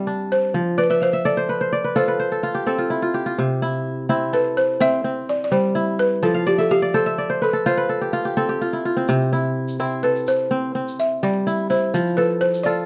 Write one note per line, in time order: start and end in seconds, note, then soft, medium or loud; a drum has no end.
0.00 0.59 G3 medium
0.00 1.16 C4 medium
0.00 0.32 D5 medium
0.07 1.75 D4 medium
0.32 0.80 C5 medium
0.54 2.88 F3 medium
0.78 0.82 B4 medium
0.78 1.25 D5 medium
0.83 0.89 B4 medium
0.90 1.02 B4 medium
0.90 1.13 E5 medium
1.02 1.26 C5 medium
1.02 2.01 F5 medium
1.13 2.02 E5 medium
1.25 1.95 A4 medium
1.25 1.72 D5 medium
1.25 1.98 D5 medium
1.37 1.60 C5 medium
1.49 1.84 B4 medium
1.61 1.90 C5 medium
1.73 2.83 D5 medium
1.84 2.07 B4 medium
1.96 2.43 F4 medium
1.96 2.31 A4 medium
1.96 2.87 C5 medium
2.08 2.73 B4 medium
2.19 3.38 C5 medium
2.32 2.66 A4 medium
2.43 2.78 F4 medium
2.55 3.14 G4 medium
2.67 4.09 C4 medium
2.67 3.99 A4 medium
2.78 3.02 F4 medium
2.90 3.32 E4 medium
3.02 3.26 F4 medium
3.14 4.55 G4 medium
3.26 3.68 F4 medium
3.38 5.72 C3 medium
3.62 4.09 E4 medium
4.09 4.80 C4 medium
4.09 5.66 E4 medium
4.33 5.65 A4 medium
4.33 4.58 B4 medium
4.57 4.81 C5 medium
4.80 5.04 C4 medium
4.80 5.30 E5 loud
5.04 6.84 C4 medium
5.29 5.43 D5 medium
5.44 5.51 D5 medium
5.52 6.27 G3 medium
5.52 6.00 C5 medium
5.75 6.77 E4 medium
5.99 6.24 B4 medium
6.23 8.57 F3 medium
6.23 6.47 A4 medium
6.23 7.10 A5 medium
6.34 6.64 F5 medium
6.47 6.58 G4 medium
6.47 6.82 D5 medium
6.58 6.71 A4 medium
6.58 7.06 E5 medium
6.71 6.93 G4 medium
6.71 7.12 F5 medium
6.82 7.18 D5 medium
6.94 7.53 A4 medium
6.94 7.39 A4 medium
6.94 7.29 C5 medium
7.06 7.72 E5 medium
7.18 8.29 D5 medium
7.30 7.66 C5 medium
7.42 7.67 A4 medium
7.42 7.72 B4 medium
7.53 7.89 A4 medium
7.66 8.13 F4 medium
7.66 8.85 C5 medium
7.66 8.81 C5 medium
7.77 8.43 B4 medium
7.89 8.36 A4 medium
8.01 8.25 G4 medium
8.13 8.61 F4 medium
8.25 8.49 G4 medium
8.37 8.96 C4 medium
8.37 9.69 A4 medium
8.49 9.90 G4 medium
8.61 8.85 F4 medium
8.73 9.32 E4 medium
8.85 9.39 F4 medium
8.97 9.79 C4 medium
9.08 11.43 C3 medium
9.08 shaker soft
9.20 shaker soft
9.33 9.79 E4 medium
9.68 shaker soft
9.80 10.50 C4 medium
9.80 11.37 E4 medium
9.92 shaker soft
10.03 11.35 A4 medium
10.03 10.25 B4 medium
10.16 shaker soft
10.27 10.72 C5 medium
10.27 shaker medium
10.51 10.75 C4 medium
10.75 12.55 C4 medium
10.88 shaker medium
11.00 11.24 E5 medium
11.23 11.99 G3 medium
11.23 11.72 D5 medium
11.47 11.70 E4 medium
11.47 shaker medium
11.70 12.72 E4 medium
11.70 12.19 C5 medium
11.94 12.86 F3 medium
11.94 shaker medium
12.07 shaker soft
12.17 12.66 A4 medium
12.17 12.42 B4 medium
12.41 12.66 C5 medium
12.54 shaker medium
12.63 12.86 F4 medium
12.63 12.86 A4 medium
12.63 12.86 D5 medium